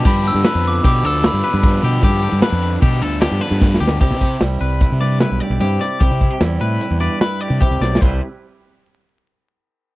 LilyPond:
<<
  \new Staff \with { instrumentName = "Glockenspiel" } { \time 5/4 \key c \major \tempo 4 = 150 b''8 e'''4 d'''8 d'''8 e'''8 b''2~ | b''1 r4 | r1 r4 | r1 r4 |
r1 r4 | }
  \new Staff \with { instrumentName = "Clean electric guitar" } { \time 5/4 \key c \major g'4 b'4 g'8 a'8 g'8 b'4 g'8 | g'4 b'4 g'8 a'8 g'8 b'4 g'8 | g'4 r8 b'4 d''8 b'8 d''8 g'8 d''8 | g'4 r8 b'4 d''8 b'8 d''8 g'8 d''8 |
c''8 r1 r8 | }
  \new Staff \with { instrumentName = "Clean electric guitar" } { \time 5/4 \key c \major << { r1 r4 | r1 r4 | e'8 g'8 e'8 b'8 e'8 b'8 e'8 g'8 e'8 g'8 | e'8 e'16 g'16 e'8 b'8 e'8 b'8 e'8 g'8 e'8 g'8 |
<g e' g' b'>8 r1 r8 | } \\ { r1 r4 | r1 r4 | c4 g4. g,4. c4 | c4 g4. g,4. c4 |
c8 r1 r8 | } >> }
  \new Staff \with { instrumentName = "Overdriven electric guitar" } { \time 5/4 \key c \major <g, d f b d'>8 <f b d'>8 <d f b d'>4 <g, d f b d'>8 <f b d'>8 <d f b d'>8 <f b d'>8 <g, d f b d'>8 <f b d'>8 | <g, d f b d'>8 <f b d'>8 <d f b d'>4 <g, d f b d'>8 <f b d'>8 <d f b d'>8 <f b d'>8 <g, d f b d'>8 <f b d'>8 | r1 r4 | r1 r4 |
r1 r4 | }
  \new Staff \with { instrumentName = "Fingered electric bass" } { \clef bass \time 5/4 \key c \major g,8. g,16 r16 f,8. b,8 d,8. g,16 r16 g,8. b,8 | g,8. g,16 r16 f,8. b,8 d,8. g,16 r16 g,8. d,8 | c,16 c8. c,8 c,8. c4 b,,16 r16 b,,16 g,8 r8 | c,16 c8 r16 e,8 a,8 r16 e,8 r4 c16 r16 c,16 b,,8 |
c,8 r1 r8 | }
  \new DrumStaff \with { instrumentName = "Drums" } \drummode { \time 5/4 <cymc bd>8 cymr8 <cymr sn>8 <cymr sn>8 <bd cymr sn>8 cymr8 <cymr sn>8 cymr8 <bd cymr>8 <cymr sn>8 | <bd cymr>8 cymr8 <cymr sn>8 cymr8 <bd cymr>8 cymr8 <cymr sn>8 cymr8 \tuplet 3/2 { <bd sn>8 sn8 sn8 } | <cymc bd>8 <hh bd sn>8 <hh sn>8 hh8 <hh bd>8 <hh sn>8 <hh sn>8 <hh sn>8 <hh sn>8 <hh sn>8 | <hh bd>8 <hh bd>8 <hh sn>8 hh8 hh8 hh8 <hh sn>8 hh8 \tuplet 3/2 { <hh bd>16 r16 r16 sn16 r16 sn16 } |
<cymc bd>4 r4 r4 r4 r4 | }
>>